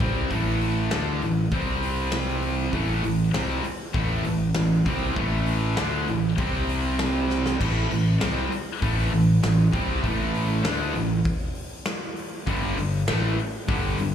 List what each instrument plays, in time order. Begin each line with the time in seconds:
0.00 fingered electric bass C2, distorted electric guitar C3 G3 C4, kick, open hi-hat
0.30 fingered electric bass A1, distorted electric guitar A2 E3 A3, kick, open hi-hat
0.61 open hi-hat
0.91 fingered electric bass D2, distorted electric guitar D3 A3 D4, snare, open hi-hat
1.22 fingered electric bass A1, distorted electric guitar A2 E3, open hi-hat
1.52 fingered electric bass C2, distorted electric guitar C3 G3 C4, kick, open hi-hat
1.82 open hi-hat
2.12 snare, open hi-hat
2.42 open hi-hat
2.73 fingered electric bass A1, distorted electric guitar A2 E3 A3, kick, open hi-hat
3.03 fingered electric bass A1, distorted electric guitar A2 E3, open hi-hat
3.34 fingered electric bass C2, distorted electric guitar C3 G3 C4, snare, open hi-hat
3.64 muted distorted electric guitar stroke, muted fingered electric bass stroke, open hi-hat
3.94 fingered electric bass A1, distorted electric guitar A2 E3 A3, kick, open hi-hat
4.24 fingered electric bass A1, distorted electric guitar A2 E3, open hi-hat
4.54 fingered electric bass A1, distorted electric guitar A2 E3, snare, open hi-hat
4.86 fingered electric bass C2, distorted electric guitar C3 G3 C4, kick, open hi-hat
5.16 fingered electric bass A1, distorted electric guitar A2 E3 A3, kick, open hi-hat
5.46 open hi-hat
5.77 fingered electric bass D2, distorted electric guitar D3 A3 D4, snare, open hi-hat
6.07 fingered electric bass A1, distorted electric guitar A2 E3, open hi-hat
6.38 fingered electric bass C2, distorted electric guitar C3 G3 C4, kick, open hi-hat
6.69 open hi-hat
6.99 snare, open hi-hat
7.30 snare
7.46 snare
7.61 fingered electric bass A1, distorted electric guitar A2 E3 A3, kick, crash
7.91 fingered electric bass A1, distorted electric guitar A2 E3, open hi-hat
8.21 fingered electric bass C2, distorted electric guitar C3 G3 C4, snare, open hi-hat
8.52 muted distorted electric guitar stroke, muted fingered electric bass stroke, open hi-hat
8.82 fingered electric bass A1, distorted electric guitar A2 E3 A3, kick, open hi-hat
9.12 fingered electric bass A1, distorted electric guitar A2 E3, open hi-hat
9.43 fingered electric bass A1, distorted electric guitar A2 E3, snare, open hi-hat
9.73 fingered electric bass C2, distorted electric guitar C3 G3 C4, kick, open hi-hat
10.02 fingered electric bass A1, distorted electric guitar A2 E3 A3, kick, open hi-hat
10.34 open hi-hat
10.64 fingered electric bass D2, distorted electric guitar D3 A3 D4, snare, open hi-hat
10.93 fingered electric bass A1, distorted electric guitar A2 E3, open hi-hat
11.25 kick, open hi-hat
11.55 open hi-hat
11.86 snare, open hi-hat
12.16 open hi-hat
12.47 fingered electric bass G1, distorted electric guitar G2 D3 G3, kick, open hi-hat
12.77 fingered electric bass G1, distorted electric guitar G2 D3, open hi-hat
13.08 fingered electric bass A1, distorted electric guitar A2 E3 A3, snare, open hi-hat
13.38 muted distorted electric guitar stroke, muted fingered electric bass stroke, open hi-hat
13.69 fingered electric bass G1, distorted electric guitar G2 D3 G3, kick, open hi-hat
13.98 fingered electric bass G1, distorted electric guitar G2 D3, open hi-hat